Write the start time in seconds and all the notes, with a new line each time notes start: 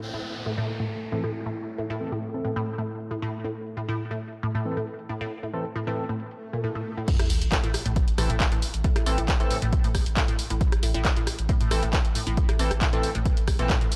0.02 A2 A3, downlifter
0.14 A2
0.46 A2
0.58 A2
0.80 A2
1.02 closed hi-hat
1.12 A2 E3 C4 A4
1.24 A2
1.34 closed hi-hat
1.46 A2
1.68 closed hi-hat
1.78 A2
1.90 A2, closed hi-hat
2.01 E3 C4 A4
2.12 A2
2.23 closed hi-hat
2.34 E3 C4 A4, closed hi-hat
2.45 A2
2.56 A2
2.67 closed hi-hat
2.78 A2, closed hi-hat
3.00 closed hi-hat
3.11 A2, closed hi-hat
3.22 A2, closed hi-hat
3.44 A2, closed hi-hat
3.55 closed hi-hat
3.67 closed hi-hat
3.77 A2
3.89 A2, closed hi-hat
3.99 closed hi-hat
4.11 A2, closed hi-hat
4.33 closed hi-hat
4.43 A2, closed hi-hat
4.55 A2, closed hi-hat
4.65 E3 C4 A4
4.77 A2, closed hi-hat
4.87 closed hi-hat
4.99 closed hi-hat
5.09 A2
5.21 A2, closed hi-hat
5.31 closed hi-hat
5.43 A2, closed hi-hat
5.53 E3 C4 A4
5.65 closed hi-hat
5.76 A2, closed hi-hat
5.87 A2 E3 C4 A4, closed hi-hat
6.09 A2, closed hi-hat
6.20 closed hi-hat, swell
6.31 closed hi-hat
6.53 A#2, closed hi-hat
6.64 A2, closed hi-hat
6.75 A2, closed hi-hat
6.97 A2, closed hi-hat
7.08 kick, closed hi-hat, crash, sub drop
7.19 A1 A2, cross-stick, closed hi-hat
7.30 A1, open hi-hat
7.41 A1, closed hi-hat
7.52 A2, kick, clap, closed hi-hat
7.64 A1 A2, closed hi-hat
7.74 cross-stick, open hi-hat
7.86 A1 A2, closed hi-hat
7.96 kick, closed hi-hat
8.08 A1, closed hi-hat
8.18 A1 A2 E3 C4 A4, cross-stick, open hi-hat
8.30 A1 A2, closed hi-hat
8.40 kick, clap, closed hi-hat
8.52 A1 A2, closed hi-hat
8.62 open hi-hat
8.74 A1, closed hi-hat
8.84 A2, kick, closed hi-hat
8.96 A1 A2, cross-stick, closed hi-hat
9.06 A1 E3 C4 A4, open hi-hat
9.18 A1 A2, closed hi-hat
9.28 kick, clap, closed hi-hat
9.40 A1 E3 C4 A4, closed hi-hat
9.51 A2, open hi-hat
9.62 A1 A2, closed hi-hat
9.73 kick, closed hi-hat
9.84 A1 A2, closed hi-hat
9.95 A1, kick, cross-stick, open hi-hat
10.06 A1, closed hi-hat
10.17 A2, kick, clap, closed hi-hat
10.28 A1 A2, closed hi-hat
10.39 open hi-hat
10.50 A1 A2, closed hi-hat
10.61 kick, closed hi-hat
10.72 A1, cross-stick, closed hi-hat
10.83 A1 A2, open hi-hat
10.94 A1 A2, closed hi-hat
11.05 kick, clap, closed hi-hat
11.17 A1 A2, closed hi-hat
11.27 cross-stick, open hi-hat
11.39 A1, closed hi-hat
11.49 A2, kick, closed hi-hat
11.61 A1 A2, closed hi-hat
11.71 A1 E3 C4 A4, cross-stick, open hi-hat
11.83 A1 A2, closed hi-hat
11.93 kick, clap, closed hi-hat
12.05 A1, closed hi-hat
12.15 A2, open hi-hat
12.27 A1 A2, closed hi-hat
12.37 kick, closed hi-hat
12.49 A1 A2, cross-stick, closed hi-hat
12.59 A1 E3 C4 A4, open hi-hat
12.71 A1, cross-stick, closed hi-hat
12.81 A2, kick, clap, closed hi-hat
12.93 A1 A2 E3 C4 A4, closed hi-hat
13.03 open hi-hat
13.15 A1 A2, closed hi-hat
13.26 kick, closed hi-hat
13.37 A1, closed hi-hat
13.48 A1, kick, cross-stick, open hi-hat
13.59 A1 A#2 E3 C4 A4, closed hi-hat
13.70 A2, kick, clap, closed hi-hat
13.81 A1 A2, closed hi-hat
13.92 open hi-hat